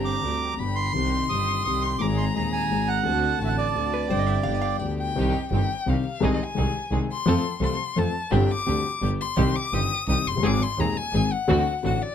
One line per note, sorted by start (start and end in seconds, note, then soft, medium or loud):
0.00 0.21 G1 medium
0.00 0.22 G1 medium
0.00 0.22 G2 medium
0.00 0.20 D3 medium
0.00 0.21 G3 soft
0.00 0.21 C4 medium
0.00 0.22 C4 soft
0.00 0.22 D4 medium
0.00 0.22 G4 medium
0.00 0.23 G4 medium
0.00 0.51 A#5 medium
0.05 0.54 D6 medium
0.23 0.57 D2 soft
0.23 0.56 D3 soft
0.23 0.57 G3 soft
0.23 0.57 C4 soft
0.23 0.57 D4 soft
0.23 0.57 G4 soft
0.23 0.58 G4 soft
0.51 0.60 A#5 medium
0.57 0.92 G1 soft
0.57 0.93 G1 soft
0.57 0.93 G2 soft
0.57 0.92 D3 soft
0.57 0.92 G3 soft
0.57 0.93 B3 soft
0.57 0.93 D4 soft
0.57 0.93 G4 soft
0.57 0.94 B5 medium
0.61 0.94 G4 soft
0.76 1.31 C6 loud
0.93 1.28 C2 medium
0.93 1.28 C3 medium
0.93 1.26 D#3 soft
0.93 1.28 G3 soft
0.93 1.28 C4 soft
0.93 1.29 C4 medium
0.93 1.29 D#4 medium
0.93 1.29 G4 medium
0.93 2.03 C6 loud
1.28 1.63 G1 soft
1.28 1.63 G2 soft
1.28 1.62 D#3 soft
1.28 1.63 G3 soft
1.28 1.63 C4 soft
1.28 1.64 C4 soft
1.28 1.64 D#4 soft
1.28 1.64 G4 soft
1.28 1.63 D#6 medium
1.32 1.64 G4 soft
1.64 1.98 C2 soft
1.64 1.98 C2 medium
1.64 1.99 C3 soft
1.64 1.97 D#3 soft
1.64 1.98 G3 soft
1.64 1.98 C4 soft
1.64 1.99 C4 soft
1.64 1.98 D#4 soft
1.64 1.99 G4 soft
1.64 1.83 D#6 medium
1.82 2.00 C6 medium
1.99 2.33 G#1 medium
1.99 2.33 G#2 medium
1.99 2.32 D#3 medium
1.99 2.33 G#3 medium
1.99 2.33 C4 medium
1.99 2.34 C4 soft
1.99 2.33 D#4 medium
1.99 2.33 G#4 medium
1.99 2.34 G#4 medium
1.99 3.06 A#5 medium
1.99 2.07 D6 medium
2.17 2.25 C6 medium
2.34 2.69 D#1 soft
2.34 2.69 D#2 soft
2.34 2.69 D#2 medium
2.34 2.68 D#3 soft
2.34 2.69 G#3 soft
2.34 2.69 C4 soft
2.34 2.69 D#4 soft
2.34 2.69 G#4 soft
2.34 2.70 G#4 soft
2.34 2.43 A#5 medium
2.53 2.89 G#5 medium
2.70 3.03 G#1 medium
2.70 3.04 G#1 soft
2.70 3.04 G#2 soft
2.70 3.03 D#3 soft
2.70 3.04 G#3 soft
2.70 3.03 C4 soft
2.70 3.04 C4 soft
2.70 3.03 D#4 soft
2.70 3.03 G#4 soft
2.70 3.05 G#4 soft
2.88 3.39 F#5 loud
3.03 3.38 D2 medium
3.03 3.39 D2 medium
3.03 3.37 D3 medium
3.03 3.38 A3 soft
3.03 3.38 C4 medium
3.03 3.39 C4 medium
3.03 3.39 D4 medium
3.03 3.39 F#4 medium
3.03 4.07 A5 medium
3.08 3.40 F#4 medium
3.39 3.73 A1 medium
3.39 3.74 A1 soft
3.39 3.74 A2 soft
3.39 3.72 D3 soft
3.39 3.73 A3 soft
3.39 3.73 C4 soft
3.39 3.74 C4 soft
3.39 3.74 D4 soft
3.39 3.74 F#4 soft
3.39 3.42 F#5 medium
3.43 3.75 F#4 soft
3.43 3.49 E5 medium
3.48 3.56 F#5 medium
3.58 4.77 D5 medium
3.73 4.08 D2 soft
3.73 4.09 D2 soft
3.73 3.75 D3 soft
3.73 4.08 D3 soft
3.73 4.08 A3 soft
3.73 4.08 C4 soft
3.73 4.09 C4 soft
3.73 4.09 D4 soft
3.73 4.08 F#4 soft
3.78 4.10 F#4 soft
3.94 4.10 B4 medium
4.09 4.43 G1 medium
4.09 4.44 G1 medium
4.09 4.44 G2 medium
4.09 4.42 D3 medium
4.09 4.43 G3 soft
4.09 4.43 C4 medium
4.09 4.44 C4 soft
4.09 4.44 D4 medium
4.09 4.44 G4 medium
4.09 4.45 G4 medium
4.09 4.18 C5 medium
4.09 4.43 G5 medium
4.19 4.27 D#5 medium
4.27 4.43 E5 medium
4.43 4.79 G1 medium
4.43 4.79 G1 soft
4.43 4.79 G2 soft
4.43 4.78 D3 soft
4.43 4.79 G3 soft
4.43 4.79 B3 soft
4.43 4.80 B3 soft
4.43 4.79 D4 soft
4.43 4.79 G4 soft
4.43 4.55 F5 loud
4.43 4.95 G5 medium
4.47 4.80 G4 soft
4.55 4.61 D#5 medium
4.62 4.79 F5 medium
4.79 5.14 D2 soft
4.79 5.15 D2 soft
4.79 5.14 D3 soft
4.79 5.14 G3 soft
4.79 5.14 B3 soft
4.79 5.15 B3 soft
4.79 5.14 D4 soft
4.79 5.14 G4 soft
4.79 5.15 G4 soft
4.79 5.15 D5 medium
4.99 5.48 G5 medium
5.16 5.31 C2 medium
5.16 5.31 C3 medium
5.16 5.31 D#3 medium
5.16 5.31 G3 medium
5.16 5.31 C4 medium
5.16 5.31 D#4 medium
5.16 5.31 G4 medium
5.51 5.66 G1 medium
5.51 5.66 G1 soft
5.51 5.66 G2 soft
5.51 5.66 D#3 medium
5.51 5.66 G3 soft
5.51 5.66 C4 soft
5.51 5.66 C4 medium
5.51 5.66 D#4 soft
5.51 5.66 G4 medium
5.51 5.91 G5 medium
5.86 6.01 C2 medium
5.86 6.01 C3 medium
5.86 6.01 D#3 soft
5.86 6.01 G3 soft
5.86 6.01 C4 soft
5.86 6.01 D#4 soft
5.86 6.01 G4 soft
5.86 6.02 G4 medium
5.86 6.05 F5 medium
6.06 6.26 F5 medium
6.20 6.36 C2 medium
6.20 6.37 C2 loud
6.20 6.35 C3 medium
6.20 6.35 D#3 medium
6.20 6.36 G#3 medium
6.20 6.36 C4 medium
6.20 6.37 D#4 medium
6.20 6.36 G#4 medium
6.20 6.37 G#4 medium
6.24 6.45 D#5 medium
6.43 6.93 G#5 loud
6.54 6.70 C2 medium
6.54 6.72 C2 medium
6.54 6.70 C3 medium
6.54 6.70 D#3 soft
6.54 6.70 G#3 soft
6.54 6.71 C4 soft
6.54 6.71 C4 medium
6.54 6.71 D#4 soft
6.54 6.71 G#4 medium
6.90 7.06 C2 medium
6.90 7.06 C3 medium
6.90 7.05 D#3 medium
6.90 7.06 G#3 soft
6.90 7.06 C4 soft
6.90 7.06 D#4 soft
6.90 7.06 G#4 medium
7.11 7.59 C6 loud
7.26 7.41 F2 loud
7.26 7.41 F2 medium
7.26 7.41 F3 loud
7.26 7.41 A3 medium
7.26 7.41 C4 medium
7.26 7.41 F4 medium
7.26 7.41 A4 medium
7.26 7.41 A4 loud
7.60 7.75 C2 medium
7.60 7.76 C2 medium
7.60 7.75 C3 medium
7.60 7.75 F3 soft
7.60 7.75 A3 soft
7.60 7.75 C4 medium
7.60 7.76 C4 medium
7.60 7.76 F4 medium
7.60 7.75 A4 medium
7.60 7.76 A4 medium
7.60 8.01 C6 medium
7.96 8.11 F2 medium
7.96 8.11 F3 medium
7.96 8.11 A3 medium
7.96 8.11 C4 medium
7.96 8.11 C4 soft
7.96 8.11 F4 soft
7.96 8.11 A4 medium
7.96 8.36 A5 loud
8.30 8.46 G1 medium
8.30 8.46 G1 loud
8.30 8.46 G2 medium
8.30 8.46 D3 medium
8.30 8.46 G3 medium
8.30 8.45 C4 medium
8.30 8.46 C4 medium
8.30 8.46 D4 medium
8.30 8.46 G4 medium
8.30 8.47 G4 medium
8.35 8.52 G5 medium
8.51 9.03 D6 loud
8.66 8.81 D2 medium
8.66 8.81 D3 medium
8.66 8.81 G3 soft
8.66 8.81 C4 medium
8.66 8.82 C4 soft
8.66 8.81 D4 soft
8.66 8.81 G4 medium
8.66 8.82 G4 medium
9.01 9.17 G1 medium
9.01 9.17 G2 medium
9.01 9.16 D3 soft
9.01 9.16 G3 soft
9.01 9.16 B3 soft
9.01 9.17 B3 soft
9.01 9.16 D4 soft
9.01 9.16 G4 medium
9.01 9.17 G4 medium
9.21 9.57 C6 loud
9.36 9.52 C2 loud
9.36 9.52 C2 medium
9.36 9.52 C3 medium
9.36 9.52 D#3 medium
9.36 9.52 G3 medium
9.36 9.51 C4 medium
9.36 9.53 C4 medium
9.36 9.52 D#4 medium
9.36 9.52 G4 medium
9.36 9.53 G4 medium
9.56 9.75 D6 loud
9.72 9.87 G1 medium
9.72 9.88 G1 medium
9.72 9.88 G2 medium
9.72 9.87 D#3 soft
9.72 9.88 G3 medium
9.72 9.87 C4 medium
9.72 9.88 C4 soft
9.72 9.87 D#4 soft
9.72 9.88 G4 medium
9.72 9.88 G4 soft
9.72 10.08 D#6 loud
10.07 10.23 C2 medium
10.07 10.23 C3 medium
10.07 10.23 D#3 soft
10.07 10.23 G3 soft
10.07 10.22 C4 soft
10.07 10.23 C4 soft
10.07 10.23 D#4 soft
10.07 10.23 G4 soft
10.07 10.23 G4 medium
10.07 10.29 D#6 loud
10.26 10.42 F#1 medium
10.26 10.48 C6 loud
10.31 10.35 F1 soft
10.36 10.39 F#1 medium
10.36 10.42 G1 medium
10.42 10.58 G#1 medium
10.42 10.58 G#1 loud
10.42 10.58 G#2 medium
10.42 10.57 D#3 medium
10.42 10.58 G#3 medium
10.42 10.58 C4 medium
10.42 10.58 D#4 medium
10.42 10.58 G#4 medium
10.42 10.58 G#4 loud
10.46 10.64 D6 loud
10.63 10.81 C6 loud
10.78 10.93 D#1 medium
10.78 10.93 D#2 medium
10.78 10.93 D#3 soft
10.78 10.93 G#3 soft
10.78 10.93 C4 medium
10.78 10.93 C4 soft
10.78 10.93 D#4 medium
10.78 10.93 G#4 medium
10.78 10.98 A#5 loud
10.97 11.34 G#5 loud
11.13 11.28 G#1 medium
11.13 11.29 G#1 medium
11.13 11.29 G#2 medium
11.13 11.28 D#3 medium
11.13 11.28 G#3 soft
11.13 11.28 C4 medium
11.13 11.29 C4 soft
11.13 11.28 D#4 soft
11.13 11.28 G#4 medium
11.13 11.29 G#4 medium
11.32 11.84 F#5 loud
11.47 11.63 D2 loud
11.47 11.63 D3 loud
11.47 11.62 A3 medium
11.47 11.63 C4 loud
11.47 11.63 C4 medium
11.47 11.63 D4 medium
11.47 11.63 F#4 medium
11.47 11.63 F#4 loud
11.83 11.98 A1 medium
11.83 11.98 A2 medium
11.83 11.98 D3 medium
11.83 11.98 A3 soft
11.83 11.98 C4 soft
11.83 11.98 C4 medium
11.83 11.98 D4 soft
11.83 11.98 F#4 medium
11.83 12.04 F#5 loud
12.02 12.15 D5 loud